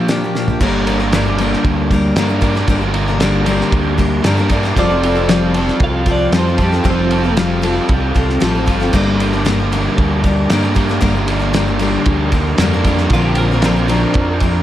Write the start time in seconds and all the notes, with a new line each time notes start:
Already playing: A#2 F3 A#3 D4 F4 A#4 F5 G5 D6
0.08 A#2 D3 F3 A#3 D4 G4, snare, closed hi-hat
0.23 F3 A#3 D4 G4
0.35 F3 A#3 D4 G4, snare
0.47 F3 A#3 D4 G4, floor tom
0.60 G1 G2 D3 G3 A#3 D4 A#4 D5 G5 D6, kick, crash
0.87 G3 A#3 D4 A#4, ride
0.99 G3 A#3 D4 A#4
1.12 G2 D3 G3 A#3 D4 A#4, snare, ride
1.25 G3 A#3 D4 A#4
1.38 G3 A#3 D4 A#4, ride
1.53 snare
1.64 D2, kick, ride
1.91 G3 A#3 D4 A#4, kick, ride
2.16 G2 D3 G3 A#3 D4 A#4, snare, ride
2.28 G3 A#3 D4 A#4
2.41 G3 A#3 D4 A#4, kick, ride
2.46 G3
2.55 G3 A#3 D4 A#4, snare
2.67 G1 G2 D3 G3 A#3 D4 A#4 C6, kick, ride
2.81 G3 A#3 D4 A#4
2.94 G3 A#3 D4 A#4, ride
3.08 G3 A#3 D4 A#4
3.20 G2 D3 G3 A#3 D4 A#4, snare, ride
3.46 G3 A#3 D4 A#4, ride
3.61 snare
3.72 D2, kick, ride
3.98 G3 A#3 D4 A#4, kick, ride
4.24 G2 D3 G3 A#3 D4 A#4, snare, ride
4.37 G3 A#3 D4 A#4
4.49 G3 A#3 D4 A#4, kick, ride
4.54 G3
4.63 G3 A#3 D4 A#4, snare
4.76 F1 F3 G3 C4 F4 A4 D5 F5 G5, kick, ride
4.89 C4 F4 A4
5.02 C4 F4 A4, ride
5.15 C4 F4 A4
5.29 F3 G3 C4 F4 A4, snare, ride
5.54 G3 C4 F4 A4, ride
5.58 A4
5.68 snare
5.80 C2, kick, ride
5.84 F5
6.06 G3 C4 F4 A4, kick, ride
6.11 D5
6.32 F2 F3 G3 C4 F4 A4, snare, ride
6.39 C5
6.47 C4 F4 A4
6.58 G3 C4 F4 A4, kick, ride
6.62 G4 A4
6.72 C4 F4 A4, snare
6.84 F1 F3 G3 C4 F4 A4 D6, kick, ride
6.90 C4
7.11 C4 F4 A4, ride
7.24 C4 F4 A4
7.37 F3 G3 C4 F4 A4, snare, ride
7.62 G3 C4 F4 A4, ride
7.67 C4
7.89 C2, kick, ride
8.14 C2 G3 C4 F4 A4, kick, ride
8.30 snare
8.40 A1 F3 G3 C4 F4 A4, snare, ride
8.55 C4 F4 A4
8.66 G1 G3 C4 F4 A4, kick, ride
8.80 C4 F4 A4, snare
8.93 G1 G2 D3 G3 A#3 D4 A#4 D5 D6, kick, crash
9.18 G3 A#3 D4 A#4, ride
9.33 G3 A#3 D4 A#4
9.45 G2 D3 G3 A#3 D4 A#4, snare, ride
9.59 G3 A#3 D4 A#4
9.72 G3 A#3 D4 A#4, ride
9.98 D2, kick, ride
10.24 G3 A#3 D4 A#4, kick, ride
10.50 G2 D3 G3 A#3 D4 A#4, snare, ride
10.63 G3 A#3 D4 A#4
10.75 G3 A#3 D4 A#4, kick, ride
10.79 G3
10.89 G3 A#3 D4 A#4, snare
11.01 G1 G2 D3 G3 A#3 D4 A#4 C6, kick, ride
11.07 A#4
11.15 G3 A#3 D4 A#4
11.27 G3 A#3 D4 A#4, ride
11.39 G3 A#3 D4 A#4
11.53 G2 D3 G3 A#3 D4 A#4, snare, ride
11.66 G3 A#3 D4 A#4
11.79 G3 A#3 D4 A#4, ride
12.05 D2, kick, ride
12.32 G3 A#3 D4 A#4, kick, ride
12.58 F2 G2 D3 G3 D4, snare, ride
12.62 A#3 A#4
12.73 G3 A#3 D4 A#4
12.84 G3 A#3 D4 A#4, kick, ride
12.89 A#4
12.98 G3 A#3 D4 A#4, snare
13.10 A#1 A#2 D3 A#3 F4 A#4 D5 F5, kick, ride
13.14 F3 C4 D4 A#4
13.25 G4
13.35 A#3 D4 A#4, ride
13.40 F3
13.51 F3 C4 D4 A#4
13.62 A#2 D3 F3 A#3 C4 D4 A#4, snare, ride
13.76 F3 C4 D4 A#4
13.88 F3 A#3 C4 D4 A#4, ride
14.14 F2, kick, ride
14.40 F3 C4 D4 A#4, kick, ride